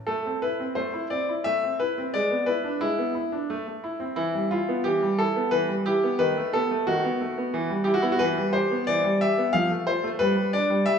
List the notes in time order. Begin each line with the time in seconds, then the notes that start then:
0.07 A3 A4
0.26 C4
0.42 E4 B4
0.60 C4
0.75 A3 C5
0.94 E4
1.10 C4 D5
1.29 E4
1.44 A3 E5
1.64 C4
1.80 E4 B4
1.98 C4
2.14 G#3 D5
2.31 B3
2.46 E4 B4
2.64 D4
2.81 G#3 E4
2.99 B3
3.15 E4
3.32 D4
3.50 A3
3.68 A3
3.84 E4
4.00 C4
4.16 E3 E4
4.35 G3
4.51 E4 F4
4.69 B3
4.84 E3 G4
5.03 G3
5.19 E4 A4
5.36 B3
5.51 E3 B4
5.69 G3
5.86 E4 G4
6.04 B3
6.19 D#3 B4
6.37 A3
6.53 B3 A4
6.71 A3
6.87 D#3 F#4
7.04 B3
7.21 A3
7.38 B3
7.54 E3
7.70 G3
7.84 E4 G4
7.94 F#4
8.02 B3 E4
8.12 F#4
8.19 E3 B4
8.37 G3
8.53 G4 C5
8.71 B3
8.87 E3 D5
9.04 G3
9.21 G4 E5
9.38 B3
9.53 F3 F5
9.71 A3
9.87 F4 C5
10.04 A3
10.19 G3 B4
10.37 G3
10.53 D4 D5
10.70 G3
10.86 G3 E5